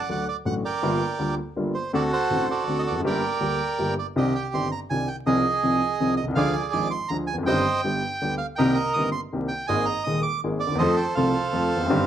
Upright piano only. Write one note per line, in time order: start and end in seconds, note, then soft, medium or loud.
0.09 0.25 D2 soft
0.09 0.25 D3 medium
0.09 0.25 F#3 soft
0.09 0.25 A3 soft
0.09 0.25 F#4 soft
0.45 0.61 A1 medium
0.45 0.62 A2 medium
0.45 0.61 D3 soft
0.45 0.62 F#3 soft
0.45 0.62 A3 soft
0.45 0.62 F#4 medium
0.82 0.98 G1 medium
0.82 0.99 G2 medium
0.82 0.98 D3 medium
0.82 0.98 G3 medium
0.82 0.99 A#3 medium
0.82 0.98 F4 medium
1.19 1.35 D2 medium
1.19 1.35 D3 medium
1.19 1.35 G3 soft
1.19 1.35 A#3 soft
1.19 1.35 F4 soft
1.56 1.72 G1 medium
1.56 1.72 G2 medium
1.56 1.72 D3 medium
1.56 1.72 G3 soft
1.56 1.72 A#3 soft
1.56 1.72 F4 soft
1.93 2.09 D2 medium
1.93 2.09 D3 medium
1.93 2.09 A3 medium
1.93 2.09 C4 medium
1.93 2.09 F#4 medium
2.30 2.46 A1 medium
2.30 2.46 A2 medium
2.30 2.46 D3 soft
2.30 2.46 A3 soft
2.30 2.46 C4 soft
2.30 2.46 F#4 medium
2.67 2.83 D2 medium
2.67 2.83 D3 medium
2.67 2.83 A3 soft
2.67 2.83 C4 soft
2.67 2.83 F#4 soft
2.90 2.95 E2 medium
2.95 3.00 F2 medium
3.00 3.04 F#2 medium
3.04 3.20 G1 medium
3.04 3.20 G2 medium
3.04 3.20 D3 medium
3.04 3.20 G3 medium
3.04 3.20 A#3 medium
3.04 3.20 G4 medium
3.40 3.56 D2 medium
3.40 3.56 D3 medium
3.40 3.56 G3 soft
3.40 3.56 A#3 soft
3.40 3.56 G4 medium
3.78 3.94 G1 medium
3.78 3.94 G2 medium
3.78 3.94 D3 soft
3.78 3.94 G3 soft
3.78 3.94 A#3 soft
3.78 3.94 G4 soft
4.16 4.31 C2 medium
4.16 4.31 C3 medium
4.16 4.31 D#3 medium
4.16 4.31 C4 medium
4.16 4.31 D4 medium
4.16 4.31 G4 medium
4.53 4.69 G1 medium
4.53 4.69 G2 soft
4.53 4.68 D#3 soft
4.53 4.68 C4 soft
4.53 4.69 D4 soft
4.53 4.69 G4 soft
4.90 5.05 C2 medium
4.90 5.06 C3 medium
4.90 5.05 D#3 soft
4.90 5.05 C4 soft
4.90 5.05 D4 soft
4.90 5.06 G4 medium
5.26 5.42 C2 medium
5.26 5.42 C3 medium
5.26 5.42 F3 medium
5.26 5.42 C4 medium
5.26 5.42 D#4 medium
5.26 5.42 G#4 medium
5.63 5.79 C2 medium
5.63 5.79 C3 medium
5.63 5.79 F3 soft
5.63 5.79 C4 soft
5.63 5.79 D#4 soft
5.63 5.79 G#4 medium
6.00 6.16 C2 medium
6.00 6.16 C3 medium
6.00 6.16 F3 soft
6.00 6.16 C4 soft
6.00 6.16 D#4 soft
6.00 6.16 G#4 medium
6.23 6.28 B1 medium
6.28 6.32 C2 medium
6.32 6.37 C#2 medium
6.32 6.52 G#3 medium
6.36 6.52 D2 medium
6.36 6.52 D3 medium
6.36 6.52 F3 medium
6.36 6.52 D4 medium
6.36 6.52 G#4 medium
6.73 6.89 G#1 medium
6.73 6.89 G#2 medium
6.73 6.89 F3 soft
6.73 6.89 G#3 soft
6.73 6.89 D4 soft
6.73 6.89 G#4 medium
7.10 7.26 D2 medium
7.10 7.26 D3 medium
7.10 7.25 F3 soft
7.10 7.26 G#3 soft
7.10 7.26 D4 soft
7.10 7.26 G#4 medium
7.34 7.38 E2 medium
7.38 7.42 F2 medium
7.43 7.47 F#2 medium
7.43 7.63 G2 medium
7.47 7.63 G1 medium
7.47 7.62 D#3 medium
7.47 7.63 G3 medium
7.47 7.63 C4 medium
7.47 7.63 G4 medium
7.84 8.00 G1 medium
7.84 8.00 G2 medium
7.84 8.00 D3 soft
7.84 8.00 G3 soft
7.84 8.00 B3 soft
7.84 8.00 G4 medium
8.22 8.37 D2 medium
8.22 8.37 D3 medium
8.22 8.37 G3 soft
8.22 8.37 B3 soft
8.22 8.37 G4 medium
8.58 8.74 C2 medium
8.58 8.74 C3 medium
8.58 8.74 D#3 medium
8.58 8.74 A#3 medium
8.58 8.74 C4 medium
8.58 8.74 G4 medium
8.96 9.11 G1 medium
8.96 9.11 G2 medium
8.96 9.11 D#3 soft
8.96 9.11 A#3 soft
8.96 9.11 C4 soft
8.96 9.11 G4 medium
9.33 9.48 C2 medium
9.33 9.48 C3 medium
9.33 9.48 D#3 soft
9.33 9.48 A#3 soft
9.33 9.48 C4 soft
9.33 9.48 G4 medium
9.69 9.85 G#1 medium
9.69 9.85 G#2 medium
9.69 9.85 D#3 medium
9.69 9.85 G#3 medium
9.69 9.85 A#3 medium
9.69 9.85 G#4 medium
10.06 10.22 D#1 medium
10.06 10.22 D#2 medium
10.06 10.22 D#3 soft
10.06 10.22 G#3 soft
10.06 10.22 A#3 soft
10.06 10.22 G#4 medium
10.44 10.59 G#1 medium
10.44 10.59 G#2 medium
10.44 10.59 D#3 medium
10.44 10.59 G#3 medium
10.44 10.59 A#3 soft
10.44 10.59 G#4 medium
10.67 10.71 D2 medium
10.72 10.76 D#2 medium
10.72 10.80 E2 medium
10.80 10.96 F2 medium
10.80 10.96 F3 medium
10.80 10.96 A3 medium
10.80 10.96 C4 medium
10.80 10.96 A4 medium
11.17 11.32 C2 medium
11.17 11.32 C3 medium
11.17 11.32 F3 medium
11.17 11.32 A3 soft
11.17 11.32 C4 soft
11.17 11.32 A4 medium
11.53 11.69 F2 medium
11.53 11.69 F3 medium
11.53 11.69 A3 medium
11.53 11.69 C4 medium
11.53 11.69 A4 medium
11.76 11.81 E2 medium
11.81 11.86 F2 medium
11.86 11.91 F#2 medium
11.86 12.06 G2 loud
11.90 12.06 G1 medium
11.90 12.06 D#3 medium
11.90 12.06 G3 medium
11.90 12.06 C4 medium
11.90 12.06 G4 medium